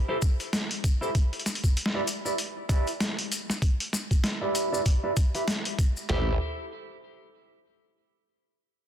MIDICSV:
0, 0, Header, 1, 4, 480
1, 0, Start_track
1, 0, Key_signature, 0, "minor"
1, 0, Tempo, 618557
1, 889, Time_signature, 4, 2, 24, 8
1, 6888, End_track
2, 0, Start_track
2, 0, Title_t, "Clean electric guitar"
2, 0, Program_c, 0, 27
2, 66, Note_on_c, 0, 64, 88
2, 71, Note_on_c, 0, 72, 104
2, 75, Note_on_c, 0, 69, 81
2, 79, Note_on_c, 0, 67, 73
2, 130, Note_off_c, 0, 64, 0
2, 130, Note_off_c, 0, 69, 0
2, 130, Note_off_c, 0, 72, 0
2, 131, Note_off_c, 0, 67, 0
2, 785, Note_on_c, 0, 64, 95
2, 792, Note_on_c, 0, 72, 100
2, 794, Note_on_c, 0, 69, 80
2, 798, Note_on_c, 0, 67, 67
2, 849, Note_off_c, 0, 67, 0
2, 850, Note_off_c, 0, 64, 0
2, 850, Note_off_c, 0, 69, 0
2, 850, Note_off_c, 0, 72, 0
2, 1507, Note_on_c, 0, 64, 90
2, 1512, Note_on_c, 0, 74, 102
2, 1515, Note_on_c, 0, 71, 78
2, 1517, Note_on_c, 0, 67, 75
2, 1570, Note_off_c, 0, 64, 0
2, 1570, Note_off_c, 0, 67, 0
2, 1571, Note_off_c, 0, 71, 0
2, 1571, Note_off_c, 0, 74, 0
2, 1748, Note_on_c, 0, 64, 70
2, 1751, Note_on_c, 0, 74, 75
2, 1756, Note_on_c, 0, 71, 53
2, 1758, Note_on_c, 0, 67, 58
2, 1810, Note_off_c, 0, 64, 0
2, 1810, Note_off_c, 0, 67, 0
2, 1810, Note_off_c, 0, 74, 0
2, 1811, Note_off_c, 0, 71, 0
2, 2088, Note_on_c, 0, 64, 99
2, 2089, Note_on_c, 0, 74, 99
2, 2093, Note_on_c, 0, 71, 82
2, 2094, Note_on_c, 0, 67, 73
2, 2222, Note_off_c, 0, 67, 0
2, 2222, Note_off_c, 0, 74, 0
2, 2223, Note_off_c, 0, 64, 0
2, 2223, Note_off_c, 0, 71, 0
2, 3425, Note_on_c, 0, 64, 80
2, 3427, Note_on_c, 0, 74, 86
2, 3431, Note_on_c, 0, 71, 67
2, 3434, Note_on_c, 0, 67, 64
2, 3634, Note_off_c, 0, 67, 0
2, 3634, Note_off_c, 0, 74, 0
2, 3635, Note_off_c, 0, 64, 0
2, 3635, Note_off_c, 0, 71, 0
2, 3666, Note_on_c, 0, 64, 89
2, 3668, Note_on_c, 0, 74, 107
2, 3671, Note_on_c, 0, 71, 80
2, 3672, Note_on_c, 0, 67, 70
2, 3728, Note_off_c, 0, 67, 0
2, 3729, Note_off_c, 0, 64, 0
2, 3729, Note_off_c, 0, 71, 0
2, 3729, Note_off_c, 0, 74, 0
2, 3907, Note_on_c, 0, 64, 89
2, 3910, Note_on_c, 0, 74, 97
2, 3915, Note_on_c, 0, 71, 75
2, 3918, Note_on_c, 0, 67, 65
2, 3970, Note_off_c, 0, 64, 0
2, 3970, Note_off_c, 0, 67, 0
2, 3970, Note_off_c, 0, 71, 0
2, 3970, Note_off_c, 0, 74, 0
2, 4148, Note_on_c, 0, 64, 86
2, 4152, Note_on_c, 0, 76, 89
2, 4153, Note_on_c, 0, 71, 68
2, 4157, Note_on_c, 0, 67, 67
2, 4210, Note_off_c, 0, 64, 0
2, 4210, Note_off_c, 0, 67, 0
2, 4210, Note_off_c, 0, 71, 0
2, 4210, Note_off_c, 0, 76, 0
2, 4730, Note_on_c, 0, 67, 75
2, 4733, Note_on_c, 0, 69, 73
2, 4735, Note_on_c, 0, 72, 87
2, 4738, Note_on_c, 0, 64, 76
2, 4916, Note_off_c, 0, 72, 0
2, 4917, Note_off_c, 0, 64, 0
2, 4917, Note_off_c, 0, 67, 0
2, 4917, Note_off_c, 0, 69, 0
2, 6888, End_track
3, 0, Start_track
3, 0, Title_t, "Wobble bass"
3, 0, Program_c, 1, 39
3, 4730, Note_on_c, 1, 33, 94
3, 4953, Note_off_c, 1, 33, 0
3, 6888, End_track
4, 0, Start_track
4, 0, Title_t, "Drums"
4, 170, Note_on_c, 9, 70, 83
4, 172, Note_on_c, 9, 36, 99
4, 172, Note_on_c, 9, 42, 62
4, 248, Note_off_c, 9, 70, 0
4, 250, Note_off_c, 9, 36, 0
4, 250, Note_off_c, 9, 42, 0
4, 310, Note_on_c, 9, 42, 34
4, 311, Note_on_c, 9, 70, 44
4, 388, Note_off_c, 9, 42, 0
4, 389, Note_off_c, 9, 70, 0
4, 411, Note_on_c, 9, 38, 117
4, 411, Note_on_c, 9, 42, 76
4, 417, Note_on_c, 9, 70, 36
4, 489, Note_off_c, 9, 38, 0
4, 489, Note_off_c, 9, 42, 0
4, 494, Note_off_c, 9, 70, 0
4, 549, Note_on_c, 9, 42, 58
4, 627, Note_off_c, 9, 42, 0
4, 651, Note_on_c, 9, 42, 65
4, 652, Note_on_c, 9, 36, 101
4, 657, Note_on_c, 9, 70, 82
4, 729, Note_off_c, 9, 36, 0
4, 729, Note_off_c, 9, 42, 0
4, 734, Note_off_c, 9, 70, 0
4, 796, Note_on_c, 9, 70, 50
4, 874, Note_off_c, 9, 70, 0
4, 892, Note_on_c, 9, 36, 106
4, 892, Note_on_c, 9, 42, 75
4, 894, Note_on_c, 9, 70, 34
4, 969, Note_off_c, 9, 36, 0
4, 969, Note_off_c, 9, 42, 0
4, 972, Note_off_c, 9, 70, 0
4, 1031, Note_on_c, 9, 42, 29
4, 1083, Note_off_c, 9, 42, 0
4, 1083, Note_on_c, 9, 42, 39
4, 1133, Note_off_c, 9, 42, 0
4, 1133, Note_on_c, 9, 40, 53
4, 1133, Note_on_c, 9, 42, 44
4, 1135, Note_on_c, 9, 70, 80
4, 1206, Note_off_c, 9, 42, 0
4, 1206, Note_on_c, 9, 42, 54
4, 1211, Note_off_c, 9, 40, 0
4, 1213, Note_off_c, 9, 70, 0
4, 1270, Note_on_c, 9, 36, 54
4, 1272, Note_on_c, 9, 70, 54
4, 1283, Note_off_c, 9, 42, 0
4, 1348, Note_off_c, 9, 36, 0
4, 1349, Note_off_c, 9, 70, 0
4, 1370, Note_on_c, 9, 70, 39
4, 1373, Note_on_c, 9, 42, 73
4, 1441, Note_on_c, 9, 38, 112
4, 1448, Note_off_c, 9, 70, 0
4, 1450, Note_off_c, 9, 42, 0
4, 1519, Note_off_c, 9, 38, 0
4, 1610, Note_on_c, 9, 42, 67
4, 1611, Note_on_c, 9, 70, 83
4, 1688, Note_off_c, 9, 42, 0
4, 1688, Note_off_c, 9, 70, 0
4, 1752, Note_on_c, 9, 70, 48
4, 1830, Note_off_c, 9, 70, 0
4, 1850, Note_on_c, 9, 42, 77
4, 1851, Note_on_c, 9, 70, 36
4, 1928, Note_off_c, 9, 42, 0
4, 1929, Note_off_c, 9, 70, 0
4, 2090, Note_on_c, 9, 36, 104
4, 2091, Note_on_c, 9, 42, 65
4, 2092, Note_on_c, 9, 70, 90
4, 2167, Note_off_c, 9, 36, 0
4, 2168, Note_off_c, 9, 42, 0
4, 2170, Note_off_c, 9, 70, 0
4, 2228, Note_on_c, 9, 70, 51
4, 2230, Note_on_c, 9, 42, 35
4, 2306, Note_off_c, 9, 70, 0
4, 2308, Note_off_c, 9, 42, 0
4, 2332, Note_on_c, 9, 38, 113
4, 2332, Note_on_c, 9, 42, 75
4, 2338, Note_on_c, 9, 70, 36
4, 2409, Note_off_c, 9, 38, 0
4, 2409, Note_off_c, 9, 42, 0
4, 2415, Note_off_c, 9, 70, 0
4, 2472, Note_on_c, 9, 42, 58
4, 2550, Note_off_c, 9, 42, 0
4, 2573, Note_on_c, 9, 42, 65
4, 2576, Note_on_c, 9, 70, 73
4, 2651, Note_off_c, 9, 42, 0
4, 2654, Note_off_c, 9, 70, 0
4, 2713, Note_on_c, 9, 40, 52
4, 2719, Note_on_c, 9, 70, 50
4, 2791, Note_off_c, 9, 40, 0
4, 2797, Note_off_c, 9, 70, 0
4, 2809, Note_on_c, 9, 36, 108
4, 2812, Note_on_c, 9, 42, 83
4, 2814, Note_on_c, 9, 70, 38
4, 2887, Note_off_c, 9, 36, 0
4, 2890, Note_off_c, 9, 42, 0
4, 2891, Note_off_c, 9, 70, 0
4, 2952, Note_on_c, 9, 42, 67
4, 3029, Note_off_c, 9, 42, 0
4, 3050, Note_on_c, 9, 40, 56
4, 3056, Note_on_c, 9, 70, 94
4, 3127, Note_off_c, 9, 40, 0
4, 3134, Note_off_c, 9, 70, 0
4, 3188, Note_on_c, 9, 36, 57
4, 3189, Note_on_c, 9, 42, 38
4, 3194, Note_on_c, 9, 70, 55
4, 3266, Note_off_c, 9, 36, 0
4, 3267, Note_off_c, 9, 42, 0
4, 3271, Note_off_c, 9, 70, 0
4, 3288, Note_on_c, 9, 38, 110
4, 3288, Note_on_c, 9, 42, 76
4, 3298, Note_on_c, 9, 70, 39
4, 3365, Note_off_c, 9, 38, 0
4, 3365, Note_off_c, 9, 42, 0
4, 3375, Note_off_c, 9, 70, 0
4, 3530, Note_on_c, 9, 42, 70
4, 3533, Note_on_c, 9, 70, 78
4, 3607, Note_off_c, 9, 42, 0
4, 3611, Note_off_c, 9, 70, 0
4, 3678, Note_on_c, 9, 70, 46
4, 3755, Note_off_c, 9, 70, 0
4, 3769, Note_on_c, 9, 36, 59
4, 3769, Note_on_c, 9, 70, 40
4, 3771, Note_on_c, 9, 42, 79
4, 3846, Note_off_c, 9, 70, 0
4, 3847, Note_off_c, 9, 36, 0
4, 3848, Note_off_c, 9, 42, 0
4, 4010, Note_on_c, 9, 36, 101
4, 4010, Note_on_c, 9, 70, 86
4, 4011, Note_on_c, 9, 42, 66
4, 4087, Note_off_c, 9, 36, 0
4, 4088, Note_off_c, 9, 42, 0
4, 4088, Note_off_c, 9, 70, 0
4, 4148, Note_on_c, 9, 42, 36
4, 4155, Note_on_c, 9, 70, 42
4, 4226, Note_off_c, 9, 42, 0
4, 4233, Note_off_c, 9, 70, 0
4, 4250, Note_on_c, 9, 38, 110
4, 4250, Note_on_c, 9, 42, 80
4, 4266, Note_on_c, 9, 70, 37
4, 4327, Note_off_c, 9, 38, 0
4, 4327, Note_off_c, 9, 42, 0
4, 4343, Note_off_c, 9, 70, 0
4, 4387, Note_on_c, 9, 42, 61
4, 4465, Note_off_c, 9, 42, 0
4, 4489, Note_on_c, 9, 36, 96
4, 4490, Note_on_c, 9, 42, 69
4, 4497, Note_on_c, 9, 70, 88
4, 4567, Note_off_c, 9, 36, 0
4, 4568, Note_off_c, 9, 42, 0
4, 4575, Note_off_c, 9, 70, 0
4, 4630, Note_on_c, 9, 70, 46
4, 4708, Note_off_c, 9, 70, 0
4, 4730, Note_on_c, 9, 38, 101
4, 4730, Note_on_c, 9, 39, 88
4, 4730, Note_on_c, 9, 43, 101
4, 4808, Note_off_c, 9, 38, 0
4, 4808, Note_off_c, 9, 39, 0
4, 4808, Note_off_c, 9, 43, 0
4, 6888, End_track
0, 0, End_of_file